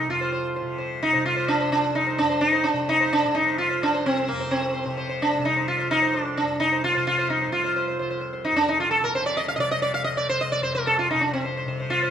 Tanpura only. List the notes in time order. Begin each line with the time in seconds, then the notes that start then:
Already playing: C2 C3
0.08 F2
0.62 C3
1.14 C3
1.68 C2
2.21 F2
2.73 C3
3.26 C3
3.79 C2
4.32 F2
4.85 C3
5.38 C3
5.91 C2
6.43 F2
6.96 C3
7.48 C3
8.01 C2
8.52 F2
9.06 C3
9.57 C3
10.10 C2
10.62 F2
11.15 C3
11.66 C3